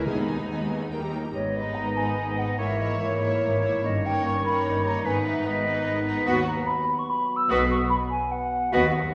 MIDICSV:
0, 0, Header, 1, 12, 480
1, 0, Start_track
1, 0, Key_signature, 5, "minor"
1, 0, Tempo, 425532
1, 73, Time_signature, 3, 2, 24, 8
1, 1993, Tempo, 413508
1, 4393, Tempo, 408441
1, 10628, End_track
2, 0, Start_track
2, 0, Title_t, "Flute"
2, 0, Program_c, 0, 73
2, 1517, Note_on_c, 0, 73, 60
2, 1761, Note_on_c, 0, 75, 51
2, 1778, Note_off_c, 0, 73, 0
2, 1972, Note_on_c, 0, 82, 69
2, 1989, Note_off_c, 0, 75, 0
2, 2229, Note_on_c, 0, 80, 53
2, 2246, Note_off_c, 0, 82, 0
2, 2711, Note_on_c, 0, 78, 52
2, 2729, Note_off_c, 0, 80, 0
2, 2952, Note_off_c, 0, 78, 0
2, 2958, Note_on_c, 0, 76, 60
2, 3194, Note_on_c, 0, 75, 49
2, 3212, Note_off_c, 0, 76, 0
2, 3422, Note_off_c, 0, 75, 0
2, 3429, Note_on_c, 0, 73, 60
2, 4371, Note_off_c, 0, 73, 0
2, 4400, Note_on_c, 0, 75, 60
2, 4655, Note_on_c, 0, 79, 53
2, 4673, Note_off_c, 0, 75, 0
2, 4883, Note_off_c, 0, 79, 0
2, 4891, Note_on_c, 0, 85, 68
2, 5117, Note_off_c, 0, 85, 0
2, 5125, Note_on_c, 0, 83, 64
2, 5581, Note_off_c, 0, 83, 0
2, 5603, Note_on_c, 0, 82, 64
2, 5836, Note_on_c, 0, 80, 70
2, 5854, Note_off_c, 0, 82, 0
2, 6066, Note_off_c, 0, 80, 0
2, 6084, Note_on_c, 0, 76, 59
2, 6322, Note_on_c, 0, 75, 63
2, 6339, Note_off_c, 0, 76, 0
2, 6918, Note_off_c, 0, 75, 0
2, 7241, Note_on_c, 0, 78, 70
2, 7486, Note_off_c, 0, 78, 0
2, 7492, Note_on_c, 0, 82, 69
2, 7721, Note_on_c, 0, 83, 74
2, 7739, Note_off_c, 0, 82, 0
2, 8101, Note_on_c, 0, 85, 64
2, 8118, Note_off_c, 0, 83, 0
2, 8227, Note_on_c, 0, 83, 70
2, 8245, Note_off_c, 0, 85, 0
2, 8539, Note_on_c, 0, 88, 77
2, 8557, Note_off_c, 0, 83, 0
2, 8706, Note_on_c, 0, 87, 73
2, 8723, Note_off_c, 0, 88, 0
2, 8942, Note_off_c, 0, 87, 0
2, 8947, Note_on_c, 0, 85, 71
2, 9017, Note_off_c, 0, 85, 0
2, 9167, Note_on_c, 0, 83, 86
2, 9237, Note_off_c, 0, 83, 0
2, 9411, Note_on_c, 0, 80, 70
2, 9658, Note_on_c, 0, 78, 71
2, 9675, Note_off_c, 0, 80, 0
2, 10146, Note_on_c, 0, 75, 70
2, 10164, Note_off_c, 0, 78, 0
2, 10379, Note_on_c, 0, 78, 64
2, 10397, Note_off_c, 0, 75, 0
2, 10628, Note_off_c, 0, 78, 0
2, 10628, End_track
3, 0, Start_track
3, 0, Title_t, "Violin section"
3, 0, Program_c, 1, 48
3, 68, Note_on_c, 1, 80, 37
3, 182, Note_off_c, 1, 80, 0
3, 186, Note_on_c, 1, 83, 30
3, 310, Note_off_c, 1, 83, 0
3, 312, Note_on_c, 1, 80, 35
3, 427, Note_on_c, 1, 83, 30
3, 434, Note_off_c, 1, 80, 0
3, 552, Note_off_c, 1, 83, 0
3, 554, Note_on_c, 1, 80, 29
3, 661, Note_on_c, 1, 83, 26
3, 667, Note_off_c, 1, 80, 0
3, 782, Note_on_c, 1, 80, 29
3, 788, Note_off_c, 1, 83, 0
3, 897, Note_on_c, 1, 83, 29
3, 908, Note_off_c, 1, 80, 0
3, 1017, Note_on_c, 1, 79, 34
3, 1025, Note_off_c, 1, 83, 0
3, 1134, Note_on_c, 1, 82, 30
3, 1136, Note_off_c, 1, 79, 0
3, 1264, Note_off_c, 1, 82, 0
3, 1271, Note_on_c, 1, 79, 31
3, 1384, Note_on_c, 1, 82, 29
3, 1394, Note_off_c, 1, 79, 0
3, 1510, Note_off_c, 1, 82, 0
3, 1748, Note_on_c, 1, 71, 35
3, 2216, Note_off_c, 1, 71, 0
3, 2230, Note_on_c, 1, 71, 29
3, 2687, Note_off_c, 1, 71, 0
3, 2701, Note_on_c, 1, 71, 31
3, 2942, Note_off_c, 1, 71, 0
3, 2946, Note_on_c, 1, 73, 37
3, 3185, Note_off_c, 1, 73, 0
3, 3198, Note_on_c, 1, 73, 37
3, 3652, Note_off_c, 1, 73, 0
3, 3666, Note_on_c, 1, 73, 34
3, 4131, Note_off_c, 1, 73, 0
3, 4145, Note_on_c, 1, 73, 33
3, 4384, Note_off_c, 1, 73, 0
3, 4637, Note_on_c, 1, 73, 40
3, 5102, Note_off_c, 1, 73, 0
3, 5116, Note_on_c, 1, 73, 34
3, 5564, Note_off_c, 1, 73, 0
3, 5578, Note_on_c, 1, 73, 41
3, 5811, Note_on_c, 1, 71, 41
3, 5812, Note_off_c, 1, 73, 0
3, 6032, Note_off_c, 1, 71, 0
3, 6047, Note_on_c, 1, 71, 41
3, 6516, Note_off_c, 1, 71, 0
3, 6530, Note_on_c, 1, 71, 44
3, 6986, Note_off_c, 1, 71, 0
3, 7000, Note_on_c, 1, 71, 47
3, 7222, Note_off_c, 1, 71, 0
3, 7237, Note_on_c, 1, 71, 54
3, 7467, Note_off_c, 1, 71, 0
3, 8708, Note_on_c, 1, 71, 59
3, 8926, Note_off_c, 1, 71, 0
3, 10146, Note_on_c, 1, 71, 53
3, 10372, Note_off_c, 1, 71, 0
3, 10628, End_track
4, 0, Start_track
4, 0, Title_t, "Oboe"
4, 0, Program_c, 2, 68
4, 1509, Note_on_c, 2, 75, 35
4, 2902, Note_off_c, 2, 75, 0
4, 2942, Note_on_c, 2, 73, 40
4, 3419, Note_off_c, 2, 73, 0
4, 3437, Note_on_c, 2, 73, 41
4, 4375, Note_off_c, 2, 73, 0
4, 4399, Note_on_c, 2, 73, 39
4, 4862, Note_off_c, 2, 73, 0
4, 4869, Note_on_c, 2, 73, 37
4, 5820, Note_on_c, 2, 71, 41
4, 5838, Note_off_c, 2, 73, 0
4, 6286, Note_off_c, 2, 71, 0
4, 6293, Note_on_c, 2, 71, 48
4, 7232, Note_off_c, 2, 71, 0
4, 7265, Note_on_c, 2, 71, 50
4, 7428, Note_off_c, 2, 71, 0
4, 8716, Note_on_c, 2, 71, 52
4, 8877, Note_off_c, 2, 71, 0
4, 10143, Note_on_c, 2, 71, 53
4, 10313, Note_off_c, 2, 71, 0
4, 10628, End_track
5, 0, Start_track
5, 0, Title_t, "Clarinet"
5, 0, Program_c, 3, 71
5, 71, Note_on_c, 3, 68, 53
5, 1014, Note_off_c, 3, 68, 0
5, 1520, Note_on_c, 3, 63, 44
5, 2908, Note_off_c, 3, 63, 0
5, 2952, Note_on_c, 3, 64, 37
5, 3424, Note_off_c, 3, 64, 0
5, 3438, Note_on_c, 3, 64, 38
5, 4375, Note_off_c, 3, 64, 0
5, 4392, Note_on_c, 3, 63, 39
5, 4863, Note_off_c, 3, 63, 0
5, 4876, Note_on_c, 3, 63, 43
5, 5803, Note_off_c, 3, 63, 0
5, 5831, Note_on_c, 3, 63, 50
5, 6293, Note_off_c, 3, 63, 0
5, 6300, Note_on_c, 3, 63, 47
5, 7235, Note_off_c, 3, 63, 0
5, 7266, Note_on_c, 3, 66, 52
5, 7429, Note_off_c, 3, 66, 0
5, 8711, Note_on_c, 3, 66, 54
5, 8873, Note_off_c, 3, 66, 0
5, 10139, Note_on_c, 3, 66, 57
5, 10311, Note_off_c, 3, 66, 0
5, 10628, End_track
6, 0, Start_track
6, 0, Title_t, "Violin section"
6, 0, Program_c, 4, 48
6, 84, Note_on_c, 4, 63, 41
6, 1256, Note_off_c, 4, 63, 0
6, 1751, Note_on_c, 4, 63, 35
6, 2216, Note_off_c, 4, 63, 0
6, 2230, Note_on_c, 4, 63, 29
6, 2690, Note_off_c, 4, 63, 0
6, 2704, Note_on_c, 4, 63, 35
6, 2943, Note_off_c, 4, 63, 0
6, 2960, Note_on_c, 4, 64, 33
6, 3167, Note_off_c, 4, 64, 0
6, 3181, Note_on_c, 4, 64, 33
6, 3657, Note_off_c, 4, 64, 0
6, 3673, Note_on_c, 4, 64, 33
6, 4130, Note_off_c, 4, 64, 0
6, 4143, Note_on_c, 4, 64, 38
6, 4383, Note_off_c, 4, 64, 0
6, 4649, Note_on_c, 4, 63, 34
6, 5111, Note_off_c, 4, 63, 0
6, 5125, Note_on_c, 4, 63, 40
6, 5581, Note_off_c, 4, 63, 0
6, 5615, Note_on_c, 4, 63, 39
6, 5824, Note_off_c, 4, 63, 0
6, 5838, Note_on_c, 4, 63, 41
6, 6058, Note_off_c, 4, 63, 0
6, 6072, Note_on_c, 4, 63, 42
6, 6525, Note_off_c, 4, 63, 0
6, 6540, Note_on_c, 4, 63, 40
6, 6991, Note_off_c, 4, 63, 0
6, 7005, Note_on_c, 4, 63, 45
6, 7244, Note_off_c, 4, 63, 0
6, 7248, Note_on_c, 4, 66, 51
6, 7473, Note_off_c, 4, 66, 0
6, 8690, Note_on_c, 4, 66, 54
6, 8917, Note_off_c, 4, 66, 0
6, 10149, Note_on_c, 4, 66, 54
6, 10373, Note_off_c, 4, 66, 0
6, 10628, End_track
7, 0, Start_track
7, 0, Title_t, "Bassoon"
7, 0, Program_c, 5, 70
7, 1521, Note_on_c, 5, 59, 45
7, 2908, Note_off_c, 5, 59, 0
7, 2949, Note_on_c, 5, 58, 39
7, 3422, Note_off_c, 5, 58, 0
7, 3429, Note_on_c, 5, 58, 41
7, 4370, Note_off_c, 5, 58, 0
7, 4384, Note_on_c, 5, 58, 41
7, 4853, Note_off_c, 5, 58, 0
7, 4861, Note_on_c, 5, 58, 45
7, 5795, Note_off_c, 5, 58, 0
7, 5815, Note_on_c, 5, 59, 48
7, 6285, Note_off_c, 5, 59, 0
7, 6295, Note_on_c, 5, 59, 51
7, 7233, Note_off_c, 5, 59, 0
7, 7246, Note_on_c, 5, 59, 48
7, 7416, Note_off_c, 5, 59, 0
7, 8710, Note_on_c, 5, 59, 59
7, 8873, Note_off_c, 5, 59, 0
7, 10149, Note_on_c, 5, 59, 53
7, 10317, Note_off_c, 5, 59, 0
7, 10628, End_track
8, 0, Start_track
8, 0, Title_t, "Viola section"
8, 0, Program_c, 6, 48
8, 88, Note_on_c, 6, 63, 38
8, 89, Note_on_c, 6, 59, 36
8, 183, Note_off_c, 6, 59, 0
8, 193, Note_off_c, 6, 63, 0
8, 195, Note_on_c, 6, 56, 28
8, 197, Note_on_c, 6, 59, 32
8, 306, Note_off_c, 6, 59, 0
8, 315, Note_off_c, 6, 56, 0
8, 317, Note_on_c, 6, 63, 33
8, 320, Note_on_c, 6, 59, 33
8, 425, Note_off_c, 6, 59, 0
8, 436, Note_off_c, 6, 63, 0
8, 439, Note_on_c, 6, 59, 31
8, 442, Note_on_c, 6, 56, 30
8, 549, Note_off_c, 6, 59, 0
8, 559, Note_off_c, 6, 56, 0
8, 562, Note_on_c, 6, 59, 31
8, 562, Note_on_c, 6, 63, 34
8, 671, Note_off_c, 6, 59, 0
8, 671, Note_off_c, 6, 63, 0
8, 685, Note_on_c, 6, 59, 27
8, 687, Note_on_c, 6, 56, 29
8, 789, Note_off_c, 6, 59, 0
8, 802, Note_off_c, 6, 56, 0
8, 803, Note_on_c, 6, 59, 26
8, 805, Note_on_c, 6, 63, 28
8, 899, Note_off_c, 6, 59, 0
8, 913, Note_on_c, 6, 59, 29
8, 915, Note_on_c, 6, 56, 31
8, 920, Note_off_c, 6, 63, 0
8, 1026, Note_on_c, 6, 58, 35
8, 1033, Note_off_c, 6, 59, 0
8, 1034, Note_off_c, 6, 56, 0
8, 1036, Note_on_c, 6, 63, 33
8, 1141, Note_off_c, 6, 58, 0
8, 1146, Note_off_c, 6, 63, 0
8, 1148, Note_on_c, 6, 67, 29
8, 1155, Note_on_c, 6, 55, 33
8, 1272, Note_off_c, 6, 67, 0
8, 1275, Note_off_c, 6, 55, 0
8, 1275, Note_on_c, 6, 58, 26
8, 1277, Note_on_c, 6, 63, 25
8, 1396, Note_off_c, 6, 58, 0
8, 1397, Note_off_c, 6, 63, 0
8, 1404, Note_on_c, 6, 67, 33
8, 1410, Note_on_c, 6, 55, 28
8, 1521, Note_off_c, 6, 67, 0
8, 1523, Note_off_c, 6, 55, 0
8, 1760, Note_on_c, 6, 56, 36
8, 2222, Note_off_c, 6, 56, 0
8, 2236, Note_on_c, 6, 56, 31
8, 2700, Note_off_c, 6, 56, 0
8, 2714, Note_on_c, 6, 56, 34
8, 2949, Note_off_c, 6, 56, 0
8, 2962, Note_on_c, 6, 58, 35
8, 3189, Note_off_c, 6, 58, 0
8, 3203, Note_on_c, 6, 58, 33
8, 3668, Note_off_c, 6, 58, 0
8, 3681, Note_on_c, 6, 58, 29
8, 4141, Note_off_c, 6, 58, 0
8, 4155, Note_on_c, 6, 58, 34
8, 4389, Note_off_c, 6, 58, 0
8, 4650, Note_on_c, 6, 58, 41
8, 5097, Note_off_c, 6, 58, 0
8, 5111, Note_on_c, 6, 58, 34
8, 5574, Note_off_c, 6, 58, 0
8, 5587, Note_on_c, 6, 58, 36
8, 5817, Note_off_c, 6, 58, 0
8, 5836, Note_on_c, 6, 59, 44
8, 6044, Note_off_c, 6, 59, 0
8, 6058, Note_on_c, 6, 59, 43
8, 6526, Note_off_c, 6, 59, 0
8, 6539, Note_on_c, 6, 59, 39
8, 7005, Note_off_c, 6, 59, 0
8, 7027, Note_on_c, 6, 59, 35
8, 7245, Note_off_c, 6, 59, 0
8, 7259, Note_on_c, 6, 59, 52
8, 7479, Note_off_c, 6, 59, 0
8, 8699, Note_on_c, 6, 59, 61
8, 8922, Note_off_c, 6, 59, 0
8, 10148, Note_on_c, 6, 59, 55
8, 10373, Note_off_c, 6, 59, 0
8, 10628, End_track
9, 0, Start_track
9, 0, Title_t, "French horn section"
9, 0, Program_c, 7, 60
9, 81, Note_on_c, 7, 56, 39
9, 83, Note_on_c, 7, 59, 38
9, 1019, Note_off_c, 7, 56, 0
9, 1020, Note_off_c, 7, 59, 0
9, 1038, Note_on_c, 7, 58, 39
9, 1046, Note_on_c, 7, 55, 35
9, 1145, Note_off_c, 7, 58, 0
9, 1281, Note_off_c, 7, 55, 0
9, 1522, Note_on_c, 7, 51, 34
9, 1523, Note_on_c, 7, 59, 39
9, 2909, Note_off_c, 7, 51, 0
9, 2909, Note_off_c, 7, 59, 0
9, 2968, Note_on_c, 7, 58, 37
9, 2973, Note_on_c, 7, 52, 37
9, 4371, Note_off_c, 7, 58, 0
9, 4374, Note_off_c, 7, 52, 0
9, 4395, Note_on_c, 7, 61, 39
9, 4408, Note_on_c, 7, 51, 42
9, 5792, Note_off_c, 7, 61, 0
9, 5823, Note_on_c, 7, 59, 46
9, 7214, Note_off_c, 7, 51, 0
9, 7226, Note_off_c, 7, 59, 0
9, 7240, Note_on_c, 7, 54, 51
9, 7246, Note_on_c, 7, 59, 59
9, 10092, Note_off_c, 7, 54, 0
9, 10095, Note_off_c, 7, 59, 0
9, 10136, Note_on_c, 7, 59, 64
9, 10143, Note_on_c, 7, 54, 54
9, 10628, Note_off_c, 7, 54, 0
9, 10628, Note_off_c, 7, 59, 0
9, 10628, End_track
10, 0, Start_track
10, 0, Title_t, "Timpani"
10, 0, Program_c, 8, 47
10, 70, Note_on_c, 8, 51, 55
10, 750, Note_off_c, 8, 51, 0
10, 10628, End_track
11, 0, Start_track
11, 0, Title_t, "Cello section"
11, 0, Program_c, 10, 48
11, 82, Note_on_c, 10, 39, 36
11, 504, Note_off_c, 10, 39, 0
11, 570, Note_on_c, 10, 39, 44
11, 985, Note_off_c, 10, 39, 0
11, 1054, Note_on_c, 10, 39, 39
11, 1469, Note_off_c, 10, 39, 0
11, 1530, Note_on_c, 10, 44, 36
11, 1945, Note_off_c, 10, 44, 0
11, 1991, Note_on_c, 10, 44, 41
11, 2415, Note_off_c, 10, 44, 0
11, 2467, Note_on_c, 10, 44, 44
11, 2893, Note_off_c, 10, 44, 0
11, 2954, Note_on_c, 10, 44, 45
11, 3378, Note_off_c, 10, 44, 0
11, 3431, Note_on_c, 10, 44, 43
11, 3854, Note_off_c, 10, 44, 0
11, 3910, Note_on_c, 10, 44, 41
11, 4334, Note_off_c, 10, 44, 0
11, 4393, Note_on_c, 10, 43, 40
11, 4816, Note_off_c, 10, 43, 0
11, 4873, Note_on_c, 10, 43, 44
11, 5294, Note_off_c, 10, 43, 0
11, 5345, Note_on_c, 10, 43, 46
11, 5761, Note_off_c, 10, 43, 0
11, 5831, Note_on_c, 10, 44, 47
11, 6247, Note_off_c, 10, 44, 0
11, 6309, Note_on_c, 10, 44, 55
11, 6724, Note_off_c, 10, 44, 0
11, 6772, Note_on_c, 10, 44, 49
11, 7195, Note_off_c, 10, 44, 0
11, 7259, Note_on_c, 10, 39, 53
11, 7655, Note_off_c, 10, 39, 0
11, 8701, Note_on_c, 10, 47, 56
11, 9100, Note_off_c, 10, 47, 0
11, 10150, Note_on_c, 10, 39, 50
11, 10554, Note_off_c, 10, 39, 0
11, 10628, End_track
12, 0, Start_track
12, 0, Title_t, "Double bass section"
12, 0, Program_c, 11, 48
12, 84, Note_on_c, 11, 39, 44
12, 504, Note_off_c, 11, 39, 0
12, 562, Note_on_c, 11, 39, 37
12, 982, Note_off_c, 11, 39, 0
12, 1032, Note_on_c, 11, 39, 43
12, 1458, Note_off_c, 11, 39, 0
12, 1521, Note_on_c, 11, 32, 43
12, 1940, Note_off_c, 11, 32, 0
12, 1987, Note_on_c, 11, 32, 42
12, 2413, Note_off_c, 11, 32, 0
12, 2468, Note_on_c, 11, 32, 40
12, 2893, Note_off_c, 11, 32, 0
12, 2936, Note_on_c, 11, 32, 47
12, 3369, Note_off_c, 11, 32, 0
12, 3429, Note_on_c, 11, 32, 40
12, 3853, Note_off_c, 11, 32, 0
12, 3917, Note_on_c, 11, 32, 43
12, 4338, Note_off_c, 11, 32, 0
12, 4394, Note_on_c, 11, 31, 48
12, 4816, Note_off_c, 11, 31, 0
12, 4868, Note_on_c, 11, 31, 46
12, 5292, Note_off_c, 11, 31, 0
12, 5344, Note_on_c, 11, 31, 48
12, 5761, Note_off_c, 11, 31, 0
12, 5813, Note_on_c, 11, 32, 52
12, 6237, Note_off_c, 11, 32, 0
12, 6288, Note_on_c, 11, 32, 50
12, 6713, Note_off_c, 11, 32, 0
12, 6764, Note_on_c, 11, 32, 55
12, 7191, Note_off_c, 11, 32, 0
12, 7251, Note_on_c, 11, 39, 56
12, 7651, Note_off_c, 11, 39, 0
12, 8688, Note_on_c, 11, 35, 68
12, 9093, Note_off_c, 11, 35, 0
12, 10139, Note_on_c, 11, 39, 62
12, 10548, Note_off_c, 11, 39, 0
12, 10628, End_track
0, 0, End_of_file